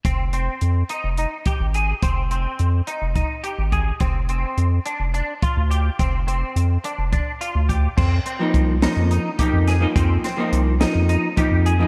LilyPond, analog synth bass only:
\new Staff \with { instrumentName = "Analog synth bass" } { \clef bass \time 7/8 \key f \dorian \tempo 4 = 106 f,,4 f,8 r16 f,,8 r8 aes,,8. | f,,4 f,8 r16 f,,8 r8 aes,,8. | f,,4 f,8 r16 f,,8 r8 d,8. | f,,4 f,8 r16 f,,8 r8 d,8. |
f,8 r8 c,8. f,8 r8 f,8. | f,8 r8 c,8. f,8 r8 f,8. | }